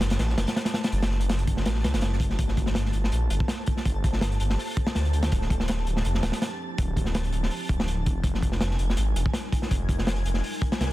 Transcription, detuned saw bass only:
0, 0, Header, 1, 2, 480
1, 0, Start_track
1, 0, Tempo, 365854
1, 1218, Time_signature, 4, 2, 24, 8
1, 14339, End_track
2, 0, Start_track
2, 0, Title_t, "Detuned saw bass"
2, 0, Program_c, 0, 39
2, 17, Note_on_c, 0, 30, 101
2, 235, Note_off_c, 0, 30, 0
2, 257, Note_on_c, 0, 33, 107
2, 475, Note_off_c, 0, 33, 0
2, 498, Note_on_c, 0, 30, 86
2, 610, Note_off_c, 0, 30, 0
2, 1216, Note_on_c, 0, 30, 104
2, 1918, Note_off_c, 0, 30, 0
2, 1935, Note_on_c, 0, 30, 101
2, 2179, Note_on_c, 0, 33, 107
2, 2199, Note_off_c, 0, 30, 0
2, 2419, Note_on_c, 0, 37, 108
2, 2438, Note_off_c, 0, 33, 0
2, 2541, Note_on_c, 0, 30, 87
2, 2561, Note_off_c, 0, 37, 0
2, 3119, Note_off_c, 0, 30, 0
2, 3133, Note_on_c, 0, 31, 106
2, 3837, Note_off_c, 0, 31, 0
2, 3855, Note_on_c, 0, 31, 102
2, 4073, Note_off_c, 0, 31, 0
2, 4095, Note_on_c, 0, 34, 108
2, 4313, Note_off_c, 0, 34, 0
2, 4337, Note_on_c, 0, 31, 88
2, 4449, Note_off_c, 0, 31, 0
2, 5057, Note_on_c, 0, 31, 103
2, 5759, Note_off_c, 0, 31, 0
2, 5779, Note_on_c, 0, 31, 102
2, 5995, Note_off_c, 0, 31, 0
2, 6500, Note_on_c, 0, 38, 78
2, 6960, Note_off_c, 0, 38, 0
2, 6983, Note_on_c, 0, 26, 101
2, 7682, Note_off_c, 0, 26, 0
2, 7699, Note_on_c, 0, 26, 98
2, 7915, Note_off_c, 0, 26, 0
2, 7939, Note_on_c, 0, 29, 105
2, 8155, Note_off_c, 0, 29, 0
2, 8177, Note_on_c, 0, 26, 84
2, 8289, Note_off_c, 0, 26, 0
2, 8901, Note_on_c, 0, 26, 98
2, 9601, Note_off_c, 0, 26, 0
2, 9617, Note_on_c, 0, 26, 99
2, 9834, Note_off_c, 0, 26, 0
2, 10094, Note_on_c, 0, 26, 86
2, 10583, Note_on_c, 0, 29, 93
2, 10603, Note_off_c, 0, 26, 0
2, 10797, Note_off_c, 0, 29, 0
2, 10805, Note_on_c, 0, 29, 99
2, 11513, Note_off_c, 0, 29, 0
2, 11535, Note_on_c, 0, 29, 100
2, 11753, Note_off_c, 0, 29, 0
2, 11777, Note_on_c, 0, 32, 107
2, 11994, Note_off_c, 0, 32, 0
2, 12016, Note_on_c, 0, 29, 89
2, 12129, Note_off_c, 0, 29, 0
2, 12741, Note_on_c, 0, 29, 102
2, 13441, Note_off_c, 0, 29, 0
2, 13457, Note_on_c, 0, 29, 102
2, 13674, Note_off_c, 0, 29, 0
2, 14177, Note_on_c, 0, 36, 77
2, 14339, Note_off_c, 0, 36, 0
2, 14339, End_track
0, 0, End_of_file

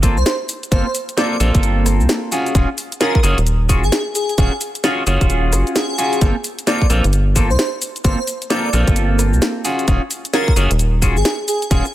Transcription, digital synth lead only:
0, 0, Header, 1, 2, 480
1, 0, Start_track
1, 0, Tempo, 458015
1, 752, Time_signature, 4, 2, 24, 8
1, 12516, End_track
2, 0, Start_track
2, 0, Title_t, "Digital synth lead"
2, 0, Program_c, 0, 84
2, 181, Note_on_c, 0, 72, 95
2, 239, Note_off_c, 0, 72, 0
2, 269, Note_on_c, 0, 72, 79
2, 366, Note_off_c, 0, 72, 0
2, 750, Note_on_c, 0, 72, 89
2, 847, Note_off_c, 0, 72, 0
2, 900, Note_on_c, 0, 72, 71
2, 959, Note_off_c, 0, 72, 0
2, 1232, Note_on_c, 0, 74, 96
2, 1328, Note_off_c, 0, 74, 0
2, 1380, Note_on_c, 0, 74, 79
2, 1439, Note_off_c, 0, 74, 0
2, 3151, Note_on_c, 0, 70, 94
2, 3328, Note_off_c, 0, 70, 0
2, 4023, Note_on_c, 0, 68, 97
2, 4080, Note_off_c, 0, 68, 0
2, 4114, Note_on_c, 0, 68, 78
2, 4209, Note_off_c, 0, 68, 0
2, 4350, Note_on_c, 0, 68, 89
2, 4528, Note_off_c, 0, 68, 0
2, 4591, Note_on_c, 0, 68, 96
2, 4768, Note_off_c, 0, 68, 0
2, 6033, Note_on_c, 0, 68, 97
2, 6573, Note_off_c, 0, 68, 0
2, 6992, Note_on_c, 0, 74, 93
2, 7169, Note_off_c, 0, 74, 0
2, 7862, Note_on_c, 0, 72, 97
2, 7920, Note_off_c, 0, 72, 0
2, 7950, Note_on_c, 0, 72, 77
2, 8047, Note_off_c, 0, 72, 0
2, 8430, Note_on_c, 0, 72, 91
2, 8527, Note_off_c, 0, 72, 0
2, 8578, Note_on_c, 0, 72, 77
2, 8638, Note_off_c, 0, 72, 0
2, 8907, Note_on_c, 0, 74, 95
2, 9005, Note_off_c, 0, 74, 0
2, 9059, Note_on_c, 0, 74, 75
2, 9118, Note_off_c, 0, 74, 0
2, 10832, Note_on_c, 0, 70, 103
2, 11009, Note_off_c, 0, 70, 0
2, 11703, Note_on_c, 0, 68, 95
2, 11760, Note_off_c, 0, 68, 0
2, 11791, Note_on_c, 0, 68, 78
2, 11887, Note_off_c, 0, 68, 0
2, 12031, Note_on_c, 0, 68, 87
2, 12208, Note_off_c, 0, 68, 0
2, 12272, Note_on_c, 0, 68, 90
2, 12449, Note_off_c, 0, 68, 0
2, 12516, End_track
0, 0, End_of_file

